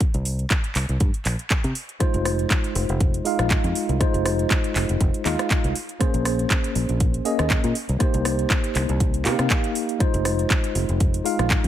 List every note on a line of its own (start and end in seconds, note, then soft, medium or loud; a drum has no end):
0.00 kick loud
0.00 closed hi-hat medium
0.14 0.44 C2 medium
0.14 closed hi-hat soft
0.25 open hi-hat loud
0.39 closed hi-hat soft
0.50 kick loud
0.50 clap loud
0.50 closed hi-hat medium
0.64 closed hi-hat soft
0.75 0.84 C2 medium
0.75 clap medium
0.75 open hi-hat loud
0.89 0.96 C2 medium
0.89 closed hi-hat soft
1.00 1.09 G2 medium
1.00 kick loud
1.00 closed hi-hat medium
1.14 closed hi-hat soft
1.25 1.34 A#1 medium
1.25 clap medium
1.25 open hi-hat loud
1.39 closed hi-hat soft
1.50 kick loud
1.50 clap loud
1.50 closed hi-hat medium
1.64 1.72 C3 medium
1.64 closed hi-hat soft
1.75 open hi-hat loud
1.89 closed hi-hat soft
2.00 3.22 G#3 medium
2.00 3.23 D#4 medium
2.00 3.23 F4 medium
2.00 3.23 C5 medium
2.00 muted fingered electric bass stroke soft
2.00 kick loud
2.00 cross-stick medium
2.00 closed hi-hat medium
2.14 2.44 F1 medium
2.14 closed hi-hat soft
2.25 cross-stick medium
2.25 open hi-hat loud
2.39 closed hi-hat soft
2.50 kick loud
2.50 clap loud
2.50 closed hi-hat medium
2.64 closed hi-hat soft
2.75 2.84 F1 medium
2.75 open hi-hat loud
2.89 3.19 F1 medium
2.89 closed hi-hat soft
3.00 kick loud
3.00 closed hi-hat medium
3.14 closed hi-hat soft
3.25 3.97 G#3 medium
3.25 3.98 D#4 medium
3.25 3.98 F4 medium
3.25 3.98 F5 medium
3.25 open hi-hat loud
3.39 3.55 A#1 medium
3.39 cross-stick medium
3.39 closed hi-hat soft
3.50 kick loud
3.50 clap loud
3.50 closed hi-hat medium
3.64 3.71 F2 medium
3.64 closed hi-hat soft
3.75 open hi-hat loud
3.89 4.00 C2 medium
3.89 closed hi-hat soft
4.00 5.22 G#3 medium
4.00 5.23 D#4 medium
4.00 5.23 F4 medium
4.00 5.23 C5 medium
4.00 kick loud
4.00 cross-stick medium
4.00 closed hi-hat medium
4.14 4.44 F1 medium
4.14 closed hi-hat soft
4.25 cross-stick medium
4.25 open hi-hat loud
4.39 closed hi-hat soft
4.51 kick loud
4.51 clap loud
4.51 closed hi-hat medium
4.64 closed hi-hat soft
4.76 4.84 F1 medium
4.76 clap medium
4.76 open hi-hat loud
4.89 4.97 F1 medium
4.89 closed hi-hat soft
5.00 5.09 F1 loud
5.00 kick loud
5.00 closed hi-hat medium
5.14 closed hi-hat soft
5.25 5.34 D#2 medium
5.25 5.74 G#3 medium
5.25 5.74 D#4 medium
5.25 5.74 F4 medium
5.25 5.74 F5 medium
5.25 clap medium
5.25 open hi-hat loud
5.39 cross-stick medium
5.39 closed hi-hat soft
5.51 kick loud
5.51 clap loud
5.51 closed hi-hat medium
5.64 5.72 C2 medium
5.64 closed hi-hat soft
5.75 open hi-hat loud
5.89 closed hi-hat soft
6.00 7.22 A#3 medium
6.00 7.23 C#4 medium
6.00 7.23 G#4 medium
6.00 7.23 C5 medium
6.00 muted fingered electric bass stroke soft
6.00 kick loud
6.00 cross-stick medium
6.00 closed hi-hat medium
6.14 6.44 A#1 medium
6.14 closed hi-hat soft
6.25 cross-stick medium
6.25 open hi-hat loud
6.39 closed hi-hat soft
6.50 kick loud
6.50 clap loud
6.50 closed hi-hat medium
6.64 closed hi-hat soft
6.75 6.84 A#1 medium
6.75 open hi-hat medium
6.89 7.19 A#1 medium
6.89 closed hi-hat soft
7.00 kick loud
7.00 closed hi-hat medium
7.14 closed hi-hat soft
7.25 7.74 A#3 medium
7.25 7.74 C#4 medium
7.25 7.74 G#4 medium
7.25 7.74 D#5 medium
7.25 open hi-hat loud
7.39 7.55 D#2 medium
7.39 cross-stick medium
7.39 closed hi-hat soft
7.50 kick loud
7.50 clap loud
7.50 closed hi-hat medium
7.64 7.72 A#2 medium
7.64 closed hi-hat soft
7.75 open hi-hat loud
7.89 8.00 C2 medium
7.89 closed hi-hat soft
7.99 9.22 A#3 medium
7.99 9.22 D#4 medium
7.99 9.23 G4 medium
7.99 9.23 C5 medium
7.99 kick loud
7.99 cross-stick medium
7.99 closed hi-hat medium
8.14 8.44 C2 medium
8.14 closed hi-hat soft
8.25 cross-stick medium
8.25 open hi-hat loud
8.39 closed hi-hat soft
8.50 kick loud
8.50 clap loud
8.50 closed hi-hat medium
8.64 closed hi-hat soft
8.75 8.84 C2 medium
8.75 clap medium
8.75 open hi-hat loud
8.89 9.27 C2 medium
8.89 closed hi-hat soft
9.00 kick loud
9.00 closed hi-hat medium
9.14 closed hi-hat soft
9.24 9.34 C3 medium
9.24 9.97 A#3 medium
9.24 9.98 D#4 medium
9.24 9.98 G4 medium
9.24 9.98 F5 medium
9.24 clap medium
9.24 open hi-hat loud
9.39 9.47 C3 medium
9.39 cross-stick medium
9.39 closed hi-hat soft
9.50 kick loud
9.50 clap loud
9.50 closed hi-hat medium
9.64 closed hi-hat soft
9.75 open hi-hat loud
9.89 closed hi-hat soft
9.99 11.22 G#3 medium
9.99 11.22 D#4 medium
9.99 11.23 F4 medium
9.99 11.23 C5 medium
9.99 muted fingered electric bass stroke soft
9.99 kick loud
9.99 cross-stick medium
9.99 closed hi-hat medium
10.14 10.44 F1 medium
10.14 closed hi-hat soft
10.25 cross-stick medium
10.25 open hi-hat loud
10.39 closed hi-hat soft
10.50 kick loud
10.50 clap loud
10.50 closed hi-hat medium
10.64 closed hi-hat soft
10.75 10.84 F1 medium
10.75 open hi-hat loud
10.89 11.19 F1 medium
10.89 closed hi-hat soft
11.00 kick loud
11.00 closed hi-hat medium
11.14 closed hi-hat soft
11.24 11.68 G#3 medium
11.24 11.68 D#4 medium
11.24 11.68 F4 medium
11.24 11.68 F5 medium
11.24 open hi-hat loud
11.39 11.55 A#1 medium
11.39 cross-stick medium
11.39 closed hi-hat soft
11.50 kick loud
11.50 clap loud
11.50 closed hi-hat medium
11.64 11.68 F2 medium
11.64 closed hi-hat soft